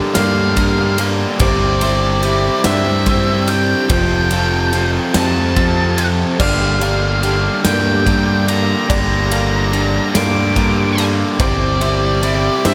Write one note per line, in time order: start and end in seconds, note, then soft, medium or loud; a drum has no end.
0.00 0.15 G2 medium
0.00 0.99 G2 medium
0.00 0.15 D3 medium
0.00 0.16 G3 medium
0.00 0.17 G3 loud
0.00 0.15 A#3 medium
0.00 0.15 A#3 loud
0.00 0.16 D4 medium
0.00 0.17 G4 medium
0.00 11.36 G4 medium
0.00 0.56 A#4 medium
0.00 3.86 D5 medium
0.00 0.16 F5 medium
0.00 1.37 F5 medium
0.00 1.37 A#5 medium
0.14 0.56 G2 medium
0.14 1.24 G2 loud
0.14 0.57 D3 medium
0.14 0.57 G3 medium
0.14 0.58 G3 medium
0.14 0.57 A#3 loud
0.14 0.57 D4 loud
0.14 0.58 G4 loud
0.14 0.99 A#4 medium
0.14 1.05 F5 medium
0.14 snare loud
0.14 ride loud
0.57 0.98 G2 medium
0.57 0.98 D3 loud
0.57 0.98 G3 medium
0.57 1.00 G3 loud
0.57 0.98 A#3 loud
0.57 0.98 D4 loud
0.57 1.00 G4 loud
0.57 1.41 A#4 medium
0.57 kick medium
0.57 ride medium
0.98 1.38 G2 loud
0.98 1.38 D3 medium
0.98 1.40 G3 medium
0.98 1.41 G3 loud
0.98 1.38 A#3 medium
0.98 1.39 D4 medium
0.98 1.42 G4 loud
0.98 ride medium
1.39 2.48 G1 loud
1.39 1.80 C3 medium
1.39 1.81 G3 loud
1.39 1.82 G3 loud
1.39 1.82 C4 loud
1.39 1.83 C4 loud
1.39 1.82 E4 loud
1.39 1.83 G4 loud
1.39 1.83 C5 loud
1.39 2.61 D5 medium
1.39 3.88 E5 medium
1.39 6.36 C6 medium
1.39 kick loud
1.39 ride loud
1.81 2.22 C3 medium
1.81 2.23 G3 medium
1.81 2.24 G3 loud
1.81 2.23 C4 loud
1.81 2.24 C4 loud
1.81 2.23 E4 loud
1.81 2.25 G4 loud
1.81 3.06 C5 medium
1.81 2.65 E5 medium
1.81 ride medium
2.23 2.64 C3 loud
2.23 2.65 G3 medium
2.23 2.66 G3 loud
2.23 2.65 C4 medium
2.23 2.65 C4 loud
2.23 2.65 E4 medium
2.23 2.67 G4 medium
2.23 ride medium
2.64 3.73 G2 loud
2.64 3.06 C3 medium
2.64 3.06 G3 medium
2.64 3.08 G3 medium
2.64 3.06 C4 loud
2.64 3.08 C4 medium
2.64 3.48 D4 medium
2.64 3.07 E4 loud
2.64 3.08 G4 loud
2.64 3.49 C5 loud
2.64 3.48 E5 loud
2.64 snare loud
2.64 ride loud
3.06 3.48 C3 medium
3.06 3.48 G3 medium
3.06 3.50 G3 medium
3.06 3.47 C4 loud
3.06 3.50 C4 loud
3.06 3.48 E4 loud
3.06 3.50 G4 medium
3.06 3.90 C5 medium
3.06 kick medium
3.06 ride medium
3.48 3.88 C3 medium
3.48 3.89 G3 medium
3.48 3.92 G3 loud
3.48 3.88 C4 loud
3.48 3.89 C4 loud
3.48 3.90 D4 medium
3.48 3.88 E4 medium
3.48 3.91 G4 loud
3.48 3.90 G5 medium
3.48 ride medium
3.89 4.98 F1 loud
3.89 4.32 F2 medium
3.89 4.32 C3 loud
3.89 4.30 F3 loud
3.89 4.33 F3 loud
3.89 4.30 C4 loud
3.89 4.32 F4 loud
3.89 4.31 A4 loud
3.89 4.32 C5 loud
3.89 11.36 F5 medium
3.89 5.19 G5 medium
3.89 6.38 A5 medium
3.89 kick loud
3.89 ride loud
4.31 4.73 F2 medium
4.31 4.74 C3 medium
4.31 4.72 F3 medium
4.31 4.75 F3 loud
4.31 4.72 C4 medium
4.31 4.73 F4 medium
4.31 4.73 A4 loud
4.31 5.15 F5 medium
4.31 ride medium
4.73 5.14 F2 medium
4.73 5.15 C3 loud
4.73 5.14 F3 medium
4.73 5.16 F3 medium
4.73 5.13 C4 medium
4.73 5.15 F4 medium
4.73 5.14 A4 medium
4.73 ride medium
5.14 5.55 F2 medium
5.14 6.23 F2 medium
5.14 5.56 C3 medium
5.14 5.55 F3 medium
5.14 5.57 F3 medium
5.14 5.55 C4 loud
5.14 5.56 F4 loud
5.14 5.56 A4 loud
5.14 5.98 C5 medium
5.14 6.05 A5 loud
5.14 snare loud
5.14 ride loud
5.56 5.96 F2 medium
5.56 5.97 C3 medium
5.56 5.96 F3 medium
5.56 5.99 F3 medium
5.56 5.97 C4 medium
5.56 5.98 F4 loud
5.56 5.98 A4 loud
5.56 kick medium
5.56 ride medium
5.97 6.37 F2 medium
5.97 6.37 C3 medium
5.97 6.39 F3 medium
5.97 6.40 F3 medium
5.97 6.37 C4 medium
5.97 6.40 F4 medium
5.97 6.38 A4 medium
5.97 ride medium
6.39 7.48 G1 loud
6.39 6.81 G2 medium
6.39 8.90 G2 medium
6.39 6.81 D3 loud
6.39 6.80 G3 loud
6.39 6.83 G3 loud
6.39 6.81 A#3 loud
6.39 6.81 D4 loud
6.39 6.82 G4 loud
6.39 6.81 D5 loud
6.39 7.61 F5 medium
6.39 11.36 A#5 medium
6.39 11.36 D6 medium
6.39 kick loud
6.39 crash loud
6.80 7.22 G2 medium
6.80 7.22 D3 medium
6.80 7.22 G3 medium
6.80 7.24 G3 loud
6.80 7.23 A#3 medium
6.80 7.23 D4 medium
6.80 7.24 G4 medium
6.80 8.06 A#4 medium
6.80 7.65 F5 medium
6.80 ride medium
7.23 7.64 G2 medium
7.23 7.64 D3 medium
7.23 7.64 G3 medium
7.23 7.66 G3 loud
7.23 7.64 A#3 medium
7.23 7.65 D4 medium
7.23 7.65 G4 medium
7.23 ride medium
7.64 8.06 G2 medium
7.64 8.73 G2 medium
7.64 8.05 D3 medium
7.64 8.06 G3 medium
7.64 8.07 G3 medium
7.64 8.06 A#3 loud
7.64 8.07 D4 medium
7.64 8.07 G4 medium
7.64 8.48 A#4 medium
7.64 8.50 G5 loud
7.64 snare loud
7.64 ride loud
8.06 8.47 G2 medium
8.06 8.47 D3 medium
8.06 8.47 G3 medium
8.06 8.48 G3 loud
8.06 8.47 A#3 medium
8.06 8.48 D4 loud
8.06 8.48 G4 medium
8.06 9.31 A#4 medium
8.06 kick medium
8.06 ride medium
8.47 8.89 G2 medium
8.47 8.89 D3 medium
8.47 8.88 G3 medium
8.47 8.91 G3 loud
8.47 8.88 A#3 medium
8.47 8.89 D4 loud
8.47 8.90 G4 medium
8.47 8.89 A#5 medium
8.47 ride medium
8.89 9.98 G1 loud
8.89 9.31 G2 medium
8.89 10.99 G2 medium
8.89 9.31 D3 loud
8.89 9.29 G3 loud
8.89 9.33 G3 loud
8.89 9.29 A#3 loud
8.89 9.31 D4 loud
8.89 9.31 G4 loud
8.89 9.31 D5 loud
8.89 10.15 A#5 loud
8.89 kick loud
8.89 ride loud
9.30 9.72 G2 medium
9.30 9.72 D3 medium
9.30 9.71 G3 medium
9.30 9.73 G3 loud
9.30 9.71 A#3 loud
9.30 9.72 D4 medium
9.30 9.73 G4 loud
9.30 10.55 A#4 medium
9.30 10.15 F5 medium
9.30 ride medium
9.72 10.13 G2 medium
9.72 10.14 D3 loud
9.72 10.13 G3 medium
9.72 10.15 G3 loud
9.72 10.13 A#3 medium
9.72 10.14 D4 medium
9.72 10.15 G4 medium
9.72 ride medium
10.14 10.55 G2 medium
10.14 11.23 G2 medium
10.14 10.55 D3 medium
10.14 10.55 G3 medium
10.14 10.57 G3 loud
10.14 10.56 A#3 loud
10.14 10.56 D4 loud
10.14 10.57 G4 loud
10.14 10.98 A#4 medium
10.14 11.05 D6 loud
10.14 snare loud
10.14 ride loud
10.56 10.96 G2 medium
10.56 10.98 D3 loud
10.56 10.97 G3 medium
10.56 10.99 G3 loud
10.56 10.97 A#3 medium
10.56 10.98 D4 medium
10.56 10.99 G4 medium
10.56 11.40 A#4 medium
10.56 kick medium
10.56 ride medium
10.97 11.37 G2 medium
10.97 11.38 D3 medium
10.97 11.38 G3 medium
10.97 11.40 G3 loud
10.97 11.37 A#3 medium
10.97 11.38 D4 loud
10.97 11.40 G4 medium
10.97 ride medium
11.38 12.48 G1 loud
11.38 11.80 C3 medium
11.38 11.80 G3 loud
11.38 11.81 G3 loud
11.38 11.81 C4 loud
11.38 11.82 C4 loud
11.38 11.81 E4 loud
11.38 12.74 G4 medium
11.38 11.82 G4 loud
11.38 11.82 C5 loud
11.38 12.66 D5 loud
11.38 12.74 E5 medium
11.38 12.74 C6 medium
11.38 12.74 D6 medium
11.38 kick loud
11.38 ride loud
11.81 12.21 C3 medium
11.81 12.22 G3 medium
11.81 12.23 G3 loud
11.81 12.23 C4 medium
11.81 12.23 C4 loud
11.81 12.23 E4 loud
11.81 12.24 G4 loud
11.81 12.74 C5 medium
11.81 12.65 E5 medium
11.81 ride medium
12.22 12.63 C3 loud
12.22 12.64 G3 medium
12.22 12.65 G3 loud
12.22 12.64 C4 medium
12.22 12.65 C4 loud
12.22 12.64 E4 medium
12.22 12.66 G4 loud
12.22 ride medium
12.64 12.74 G2 loud
12.64 12.74 C3 medium
12.64 12.74 G3 medium
12.64 12.74 C4 medium
12.64 12.74 D4 medium
12.64 12.74 E4 medium
12.64 12.74 G4 loud
12.64 12.74 C5 loud
12.64 12.74 E5 loud
12.64 snare loud
12.64 ride loud